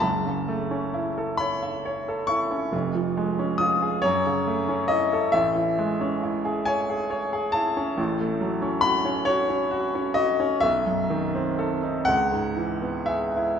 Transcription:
\new Staff \with { instrumentName = "Grand piano" } { \time 6/8 \key fis \dorian \tempo 4. = 45 << { a''4. b''4 cis'''8~ | cis'''4 dis'''8 cis''4 dis''8 | e''4. gis''4 a''8~ | a''4 b''8 cis''4 dis''8 |
e''4. fis''4 e''8 | } \\ { <fis,, fis,>16 cis16 a16 cis'16 e'16 a'16 cis''16 e''16 cis''16 a'16 e'16 cis'16 | <eis,, eis,>16 eis16 gis16 cis'16 eis'16 gis'16 fis,16 cis16 a16 cis'16 e'16 a'16 | <a,, a,>16 e16 gis16 cis'16 e'16 gis'16 cis''16 gis'16 cis''16 gis'16 e'16 cis'16 | <a,, a,>16 a16 fis16 cis'16 fis'16 cis'16 fis'16 cis'16 fis'16 cis'16 fis'16 cis'16 |
b,,16 fis,16 dis16 c'16 a'16 dis'16 cis,16 gis,16 e16 b16 gis'16 e'16 | } >> }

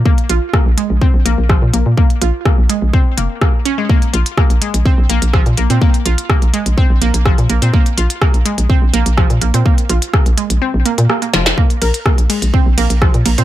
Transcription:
<<
  \new Staff \with { instrumentName = "Synth pluck" } { \time 4/4 \key c \phrygian \tempo 4 = 125 bes16 r16 f'16 r16 bes16 r16 aes16 r16 c'16 r16 bes16 r16 f16 r16 bes16 r16 | bes16 r16 f'16 r16 bes16 r16 aes16 r16 c'16 r16 bes16 r16 bes16 r16 des'16 aes16 | bes16 r16 f'16 r16 bes16 r16 aes16 r16 c'16 r16 bes16 r16 f16 r16 bes16 c'16 | bes16 r16 f'16 r16 bes16 r16 aes16 r16 c'16 r16 bes16 r16 f16 r16 bes16 c'16 |
bes16 r16 f'16 r16 bes16 r16 aes16 r16 c'16 r16 bes16 r16 f16 r16 bes16 c'16 | bes16 r16 f'16 r16 bes16 r16 aes16 r16 c'16 r16 bes16 r16 bes16 bes16 f16 r16 | bes16 r16 bes'16 r16 bes16 r16 aes16 r16 c'16 r16 bes16 r16 f16 r16 bes16 c'16 | }
  \new Staff \with { instrumentName = "FM bass" } { \clef bass \time 4/4 \key c \phrygian r8 bes,,16 r8 bes,,16 r16 bes,,16 r16 bes,,16 bes,,16 bes,,8 bes,16 bes,,16 bes,16 | r8 bes,,16 r8 bes,,16 r16 bes,,16 r8 f,,16 r4 r16 | r8 bes,,16 r8 bes,,16 r16 bes,,16 r16 bes,,16 bes,,16 bes,,8 bes,16 bes,,16 bes,16 | r8 bes,,16 r8 bes,,16 r16 bes,,16 r16 bes,,16 bes,,16 bes,,8 bes,16 bes,,16 bes,16 |
r8 bes,,16 r8 bes,,16 r16 bes,,16 r16 bes,,16 bes,,16 bes,,8 bes,16 bes,,16 bes,16 | r8 bes,,16 r8 bes,,16 r16 bes,,16 r16 bes,,16 r16 bes,16 r8 f,,8 | r8 bes,,16 r8 bes,,16 r16 bes,,16 r16 bes,,16 bes,,16 bes,,8 bes,16 bes,,16 bes,16 | }
  \new DrumStaff \with { instrumentName = "Drums" } \drummode { \time 4/4 bd16 hh16 hh8 <bd ss>8 hh8 bd8 hh8 <bd ss>8 hh8 | bd16 hh16 hh8 <bd ss>8 hh8 bd8 hh8 <bd ss>8 hh8 | bd16 hh16 hh16 hh16 <bd ss>16 hh16 hh16 hh16 bd8 hh16 hh16 <bd ss>16 hh16 hh16 hh16 | bd16 hh16 hh16 hh16 <bd ss>16 hh16 hh16 hh16 bd8 hh16 hh16 <bd ss>16 hh16 hh16 hh16 |
bd16 hh16 hh16 hh16 <bd ss>16 hh16 hh16 hh16 bd8 hh16 hh16 <bd ss>16 hh16 hh16 hh16 | bd16 hh16 hh16 hh16 <bd ss>16 hh16 hh16 hh16 r8 hh16 hh16 ss16 hh16 <hh sn>16 <hh sn>16 | bd16 hh16 <hh cymr>16 hh16 <bd ss>16 hh16 <hh cymr>16 hh16 bd8 <hh cymr>16 hh16 <bd ss>16 hh16 <hh cymr>16 hh16 | }
>>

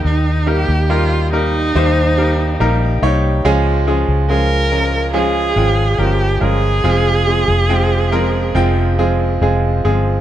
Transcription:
<<
  \new Staff \with { instrumentName = "Viola" } { \time 4/4 \key ees \mixolydian \tempo 4 = 70 ees'8 g'8 f'8 ees'2 r8 | r4 bes'4 aes'4 g'8 aes'8~ | aes'2. r4 | }
  \new Staff \with { instrumentName = "Grand piano" } { \time 4/4 \key ees \mixolydian <g bes ees' g' bes'>8 <g bes ees' g' bes'>8 <g bes ees' g' bes'>8 <g bes ees' g' bes'>8 <g bes ees' g' c''>8 <g bes ees' g' bes'>8 <g bes ees' g' bes'>8 <g bes ees' g' des''>8 | <f aes des' f' aes'>8 <f aes des' f' aes'>8 <f aes des' f' aes'>8 <f aes des' f' bes'>8 <f aes des' f' aes'>8 <f aes des' f' g''>8 <f aes des' f' bes'>8 <f aes des' f' bes'>8 | <f aes c' f' aes'>8 <f aes c' f' aes'>8 <f aes c' f' g''>8 <f aes c' f' bes'>8 <f aes c' f' g''>8 <f aes c' f' aes'>8 <f aes c' f' aes'>8 <f aes c' f' aes'>8 | }
  \new Staff \with { instrumentName = "Grand piano" } { \clef bass \time 4/4 \key ees \mixolydian ees4 r2 bes''4 | des4. r2 r8 | r1 | }
  \new Staff \with { instrumentName = "Fingered electric bass" } { \clef bass \time 4/4 \key ees \mixolydian ees,8. ees,4~ ees,16 ees,4 bes,,8 c,8 | des,8. des,4.~ des,16 aes,,8 g,,8 g,,8 | f,,8. f,,4~ f,,16 f,,4 f,,8 g,,8 | }
>>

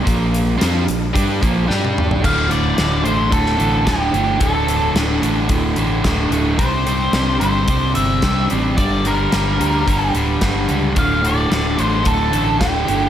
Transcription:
<<
  \new Staff \with { instrumentName = "Lead electric guitar" } { \time 4/4 \key d \minor \tempo 4 = 110 r1 | f''8 d''4 c''8 a'4 g'4 | a'4 r2. | c''4. c''4 e''4 r8 |
d''8 bes'2 r4. | f''8 d''4 c''8 a'4 g'4 | }
  \new Staff \with { instrumentName = "Overdriven electric guitar" } { \clef bass \time 4/4 \key d \minor <bes, f bes>4 <f c' f'>8 <bes, f>8 <g d' g'>8 <bes, f bes>8 <g d' g'>4 | <d, a, d>8 <d, a, d>8 <d, a, d>8 <d, a, d>8 <d, a, d>8 <d, a, d>8 <d, a, d>8 <d, a, d>8 | <d, a, d>8 <d, a, d>8 <d, a, d>8 <d, a, d>8 <d, a, d>8 <d, a, d>8 <d, a, d>8 <d, a, d>8 | <c g c'>8 <c g c'>8 <c g c'>8 <c g c'>8 <c g c'>8 <c g c'>8 <c g c'>8 <c g c'>8 |
<g, d g>8 <g, d g>8 <g, d g>8 <g, d g>8 <g, d g>8 <g, d g>8 <g, d g>8 <g, d g>8 | <d, a, d>8 <d, a, d>8 <d, a, d>8 <d, a, d>8 <d, a, d>8 <d, a, d>8 <d, a, d>8 <d, a, d>8 | }
  \new Staff \with { instrumentName = "Fingered electric bass" } { \clef bass \time 4/4 \key d \minor bes,,4 f,8 bes,,8 g,8 bes,,8 g,4 | d,,4 d,,8 a,,8 d,,8 a,,8 d,,8 g,,8 | d,,4 d,,8 a,,8 d,,8 a,,8 d,,8 d,,8 | c,4 c,8 g,,8 c,8 g,,8 c,8 a,,8 |
g,,4 g,,8 d,8 g,,8 d,,8 g,,8 cis,8 | d,,4 d,,8 a,,8 d,,8 a,,8 d,,8 g,,8 | }
  \new DrumStaff \with { instrumentName = "Drums" } \drummode { \time 4/4 <hh bd>8 hh8 <hh sn>8 hh8 <hh bd>8 <hh bd>8 sn16 tommh16 toml16 tomfh16 | <cymc bd>8 hh8 <hh sn>8 hh8 <hh bd>16 sn16 hh8 <hh bd sn>8 hh8 | <hh bd>8 hh8 <hh sn>8 hh8 <hh bd>8 hh8 <hh bd sn>8 hh8 | <hh bd>8 hh8 <hh sn>8 hh8 <hh bd>8 hh8 <hh bd sn>8 hh8 |
<hh bd>8 hh8 <hh sn>8 hh8 <hh bd>8 hh8 <hh bd sn>8 hh8 | <hh bd>8 hh8 <hh sn>8 hh8 <hh bd>8 hh8 <hh bd sn>8 hh8 | }
>>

